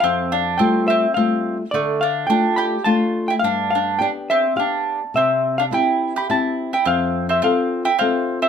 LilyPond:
<<
  \new Staff \with { instrumentName = "Hollow-body jazz guitar" } { \time 3/4 \key f \lydian \tempo 4 = 106 f''8 f''8 g''8 e''8 f''8. r16 | d''8 f''8 g''8 b''8 a''8. g''16 | f''8 f''8 g''8 e''8 f''8. r16 | e''8. f''16 g''8. b''16 a''8. g''16 |
f''8. e''16 f''8. g''16 f''8. e''16 | }
  \new Staff \with { instrumentName = "Mandolin" } { \time 3/4 \key f \lydian c'8 d'8 c'8 c'8 c'8. r16 | a8 d'8 d'8 g'8 f'8. e'16 | d'8 d'8 d'8 c'8 d'8. r16 | c'8. d'16 e'8. g'16 e'8. e'16 |
c'8. c'16 c'8. e'16 c'8. c'16 | }
  \new Staff \with { instrumentName = "Nylon-string guitar" } { \time 3/4 \key f \lydian f,4 <g a f'>4 <g a f'>4 | d4 <a d' f'>4 <a d' f'>4 | g,4 <b d' g'>4 <b d' g'>4 | c4 <c' e' g'>4 <c' e' g'>4 |
f,4 <c' f' a'>4 <c' f' a'>4 | }
>>